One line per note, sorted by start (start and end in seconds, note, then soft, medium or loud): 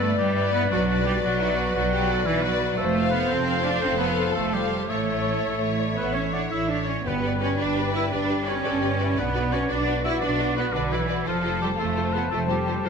0.00 0.11 G2 medium
0.00 0.17 A3 medium
0.00 0.13 D4 medium
0.00 0.17 A4 medium
0.00 0.34 B4 medium
0.00 2.75 B4 medium
0.00 2.76 B4 medium
0.00 0.33 D5 soft
0.00 2.75 D5 medium
0.00 2.76 D5 medium
0.16 0.64 G2 medium
0.16 0.52 G3 medium
0.16 0.69 E4 medium
0.16 0.52 G4 medium
0.35 0.70 B4 medium
0.35 0.70 D5 medium
0.52 0.69 B3 medium
0.52 0.70 B4 medium
0.70 1.16 B1 medium
0.70 1.04 F#3 medium
0.70 1.22 D4 medium
0.70 0.86 F#4 medium
0.70 1.05 F#4 medium
0.70 0.87 B4 medium
0.70 0.88 D5 medium
0.87 1.38 F#4 medium
0.87 1.39 B4 medium
0.87 1.40 D5 medium
1.05 1.22 G3 medium
1.05 1.13 G4 medium
1.22 1.69 B1 medium
1.22 1.73 F#3 loud
1.22 1.73 F#4 medium
1.22 1.40 F#4 medium
1.40 1.57 E4 medium
1.40 1.91 F#4 medium
1.40 1.91 B4 medium
1.40 1.92 D5 medium
1.57 1.64 D4 medium
1.74 2.21 B1 medium
1.74 2.25 F#3 medium
1.74 1.91 F#4 medium
1.74 2.28 F#4 medium
1.90 2.42 F#4 medium
1.90 2.08 G4 medium
1.90 2.43 B4 medium
1.90 2.43 D5 medium
2.10 2.27 A4 medium
2.26 2.72 B1 medium
2.26 2.43 E3 loud
2.26 2.44 E4 medium
2.26 2.78 B4 medium
2.42 2.78 F#3 medium
2.42 2.77 F#4 medium
2.42 2.78 F#4 medium
2.42 2.78 B4 medium
2.42 2.78 D5 medium
2.77 3.25 F1 medium
2.77 3.13 A3 medium
2.77 3.10 A4 medium
2.77 6.87 A4 medium
2.77 3.30 C5 medium
2.77 4.85 C5 medium
2.77 3.27 C5 medium
2.77 3.27 F5 medium
2.95 3.46 F4 medium
2.95 3.47 C5 medium
2.95 3.44 F5 medium
3.11 3.30 B3 medium
3.11 3.19 B4 medium
3.28 3.76 F1 medium
3.28 3.65 C4 medium
3.28 4.89 A4 medium
3.28 3.65 C5 medium
3.28 3.81 C5 medium
3.28 3.81 F5 medium
3.45 3.98 F4 medium
3.45 3.99 C5 medium
3.45 3.98 F5 medium
3.63 3.82 D4 medium
3.63 3.81 D5 medium
3.81 4.29 F1 medium
3.81 4.00 C4 medium
3.81 3.97 C5 medium
3.81 4.34 C5 medium
3.81 4.34 F5 medium
3.98 4.34 B3 medium
3.98 4.52 F4 medium
3.98 4.52 A4 soft
3.98 4.34 B4 medium
3.98 4.50 F5 soft
4.35 4.83 F1 medium
4.35 4.53 A3 medium
4.35 4.55 A4 medium
4.35 4.90 C5 medium
4.35 4.90 F5 medium
4.52 4.88 G3 medium
4.52 4.89 F4 soft
4.52 4.91 G4 medium
4.52 4.88 C5 soft
4.52 4.88 F5 soft
4.88 5.37 A1 soft
4.88 5.94 A3 medium
4.88 5.07 E4 soft
4.88 5.69 A4 medium
4.88 6.83 C#5 soft
4.88 5.06 C#5 soft
4.88 5.28 C#5 soft
4.88 5.07 C#5 soft
4.88 6.75 C#5 medium
4.88 6.80 E5 soft
5.07 5.60 E4 soft
5.07 5.60 C#5 soft
5.43 5.91 A1 soft
5.43 5.81 C#5 soft
5.62 6.14 E4 soft
5.62 6.14 C#5 soft
5.62 6.15 C#5 soft
5.79 5.98 D5 soft
5.97 6.45 A1 soft
5.97 6.14 B3 medium
5.97 6.14 B4 medium
5.97 6.35 E5 medium
6.14 6.33 C#4 medium
6.14 6.68 E4 soft
6.14 6.22 C#5 medium
6.14 6.68 C#5 soft
6.14 6.69 C#5 soft
6.32 6.50 D4 medium
6.32 6.41 D5 soft
6.32 6.53 F#5 medium
6.51 6.99 A1 soft
6.51 6.69 E4 medium
6.51 6.69 E5 medium
6.51 6.87 E5 soft
6.69 6.87 D4 medium
6.69 7.05 E4 soft
6.69 7.05 C#5 soft
6.69 6.78 D5 soft
6.88 7.05 C#4 medium
6.88 7.09 C#5 medium
6.88 7.05 D5 soft
7.04 7.53 G1 medium
7.04 7.56 G2 medium
7.04 7.40 B3 medium
7.04 9.13 G4 medium
7.04 7.13 G4 soft
7.04 11.23 B4 medium
7.04 8.61 B4 medium
7.04 7.12 B4 soft
7.04 7.42 B4 medium
7.04 11.23 D5 medium
7.04 7.13 D5 soft
7.04 9.14 G5 medium
7.23 7.30 G4 soft
7.23 7.30 B4 soft
7.23 7.32 D5 medium
7.40 7.58 C#4 medium
7.40 7.48 G4 soft
7.40 7.47 B4 soft
7.40 7.63 C#5 medium
7.44 7.51 D5 soft
7.58 8.05 G1 medium
7.58 7.93 D4 medium
7.58 7.66 G4 soft
7.58 7.66 B4 soft
7.58 7.68 D5 soft
7.58 7.95 D5 medium
7.76 7.83 G4 soft
7.76 7.83 B4 soft
7.76 7.85 D5 soft
7.94 8.11 E4 medium
7.94 8.01 G4 soft
7.94 8.01 B4 soft
7.94 8.02 D5 soft
7.94 8.04 E5 medium
8.12 8.59 G1 medium
8.12 8.47 D4 medium
8.12 8.20 G4 soft
8.12 8.19 B4 medium
8.12 8.19 D5 soft
8.12 8.49 D5 medium
8.30 8.37 G4 soft
8.30 8.37 B4 soft
8.30 8.37 D5 soft
8.46 9.18 C#4 medium
8.46 8.55 G4 soft
8.46 8.55 B4 soft
8.46 9.18 C#5 medium
8.46 8.53 D5 medium
8.63 9.12 G1 medium
8.63 8.72 G4 medium
8.63 8.81 A4 medium
8.63 8.72 B4 medium
8.63 8.72 D5 soft
8.81 8.99 G4 medium
8.81 8.90 G4 soft
8.81 8.90 B4 soft
8.81 8.89 D5 soft
8.99 9.18 E4 medium
8.99 9.07 G4 soft
8.99 9.07 B4 soft
8.99 9.06 D5 soft
9.16 9.65 B1 medium
9.16 9.53 B3 medium
9.16 9.72 D4 medium
9.16 9.24 F#4 medium
9.16 11.23 F#4 medium
9.16 9.24 B4 medium
9.16 9.55 B4 medium
9.16 9.24 D5 medium
9.16 11.28 F#5 medium
9.34 9.42 F#4 soft
9.34 9.42 B4 soft
9.34 9.42 D5 medium
9.52 9.71 C#4 medium
9.52 9.60 F#4 soft
9.52 9.60 B4 soft
9.52 9.73 C#5 medium
9.52 9.59 D5 medium
9.69 10.16 B1 medium
9.69 10.04 D4 medium
9.69 9.77 F#4 soft
9.69 10.73 F#4 medium
9.69 9.77 B4 medium
9.69 9.76 D5 medium
9.69 10.05 D5 medium
9.86 9.95 F#4 soft
9.86 9.95 B4 soft
9.86 9.93 D5 soft
10.04 10.22 E4 medium
10.04 10.12 F#4 medium
10.04 10.12 B4 medium
10.04 10.11 D5 soft
10.04 10.13 E5 medium
10.20 10.68 B1 medium
10.20 10.57 D4 medium
10.20 10.30 F#4 medium
10.20 10.30 B4 medium
10.20 10.55 D5 medium
10.20 10.29 D5 medium
10.39 10.47 F#4 medium
10.39 10.47 B4 soft
10.39 10.46 D5 soft
10.56 10.65 B3 medium
10.56 10.65 F#4 medium
10.56 10.74 B4 medium
10.56 10.64 B4 soft
10.56 10.63 D5 medium
10.73 11.21 B1 medium
10.73 10.92 D3 medium
10.73 10.93 D4 medium
10.73 10.82 F#4 medium
10.73 11.26 B4 medium
10.73 10.81 B4 soft
10.73 10.83 D5 medium
10.92 11.27 E3 medium
10.92 11.27 E4 medium
10.92 11.00 F#4 soft
10.92 11.00 B4 soft
10.92 10.99 D5 soft
11.09 11.16 F#4 soft
11.09 11.16 B4 soft
11.09 11.16 D5 medium
11.26 11.73 F1 medium
11.26 11.62 F3 medium
11.26 11.34 F4 medium
11.26 11.61 F4 medium
11.26 11.78 A4 medium
11.26 11.34 A4 medium
11.26 12.89 A4 medium
11.26 11.33 C5 medium
11.26 12.89 C5 medium
11.26 12.89 A5 medium
11.44 11.51 F4 soft
11.44 11.51 A4 soft
11.44 11.52 C5 medium
11.62 11.69 G3 medium
11.62 11.69 F4 soft
11.62 11.70 G4 medium
11.62 11.70 A4 soft
11.62 11.70 C5 soft
11.77 12.25 F1 medium
11.77 12.14 A3 medium
11.77 12.31 F4 medium
11.77 11.86 F4 soft
11.77 11.86 A4 soft
11.77 12.15 A4 medium
11.77 11.87 C5 medium
11.97 12.04 F4 soft
11.97 12.04 A4 soft
11.97 12.04 C5 soft
12.13 12.32 B3 medium
12.13 12.21 F4 soft
12.13 12.21 A4 soft
12.13 12.30 B4 medium
12.13 12.22 C5 soft
12.29 12.79 F1 medium
12.29 12.49 A3 medium
12.29 12.82 C4 medium
12.29 12.38 F4 medium
12.29 12.38 A4 soft
12.29 12.39 A4 medium
12.34 12.40 C5 soft
12.49 12.84 G3 medium
12.49 12.56 F4 soft
12.49 12.87 G4 medium
12.49 12.56 A4 soft
12.49 12.56 C5 soft
12.67 12.74 F4 soft
12.67 12.74 A4 soft
12.67 12.75 C5 soft
12.85 12.89 F1 soft
12.85 12.89 F3 medium
12.85 12.89 D4 soft
12.85 12.89 F4 soft
12.85 12.89 F4 medium
12.85 12.89 A4 soft
12.85 12.89 C5 soft